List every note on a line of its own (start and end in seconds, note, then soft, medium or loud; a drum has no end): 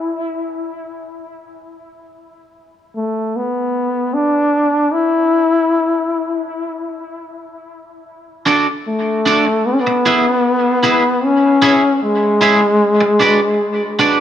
0.00 0.19 E4 loud
2.96 3.38 A3 medium
3.36 4.16 B3 medium
4.14 4.94 D4 medium
4.92 6.50 E4 loud
8.46 8.66 D4 medium
8.46 8.66 F#4 medium
8.46 8.66 A4 medium
8.46 8.66 D5 medium
8.88 9.68 A3 medium
9.26 9.45 D4 medium
9.26 9.45 F#4 medium
9.26 9.45 A4 medium
9.26 9.46 D5 medium
9.47 muted clean electric guitar stroke soft
9.66 9.75 B3 loud
9.73 9.82 C#4 medium
9.80 11.25 B3 loud
9.87 muted clean electric guitar stroke soft
10.06 10.24 E4 medium
10.06 10.24 G#4 medium
10.06 10.25 B4 medium
10.06 10.25 E5 medium
10.83 11.02 E4 medium
10.83 11.03 G#4 medium
10.83 11.03 B4 medium
10.83 11.03 E5 medium
11.24 12.02 C#4 loud
11.62 11.81 E4 medium
11.62 11.81 G#4 medium
11.62 11.82 C#5 medium
11.62 11.82 E5 medium
12.03 13.95 G#3 medium
12.41 12.60 E4 medium
12.41 12.61 G#4 medium
12.41 12.60 C#5 medium
12.41 12.59 E5 loud
12.60 muted clean electric guitar stroke medium
13.01 muted clean electric guitar stroke medium
13.20 13.39 D4 medium
13.20 13.39 F#4 medium
13.20 13.40 B4 medium
13.20 13.40 D5 medium
13.99 14.18 D4 medium
13.99 14.18 F#4 medium
13.99 14.19 B4 medium
13.99 14.19 D5 medium